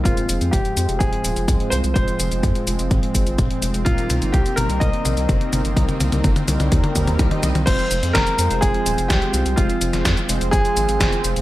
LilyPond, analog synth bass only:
\new Staff \with { instrumentName = "Analog synth bass" } { \clef bass \time 4/4 \key f \minor \tempo 4 = 126 f,,16 r16 f,,16 f,16 f,,16 r16 f,16 f,,16 f,,16 r16 ees,,16 f,,16 c,16 r16 c,16 c,16 | f,,16 r16 f,,16 f,,16 f,16 r16 f,,16 f,,16 aes,,16 r16 aes,,16 aes,,16 f,,16 r16 f,,16 f,,16 | c,16 r16 c,16 g,,16 c,16 r16 g,,16 c,16 c,16 r16 bes,,16 c,16 g,,16 r16 g,,16 g,,16 | c,16 r16 c,16 c,16 g,,16 r16 c,16 c,16 ees,16 r16 ees,16 ees,16 c,16 r16 c,16 c,16 |
f,,16 r16 f,,16 f,16 f,,16 r16 f,16 f,,16 f,,16 r16 ees,,16 f,,16 c,16 r16 c,16 c,16 | f,,16 r16 f,,16 f,,16 f,16 r16 f,,16 f,,16 aes,,16 r16 aes,,16 aes,,16 f,,16 r16 f,,16 f,,16 | }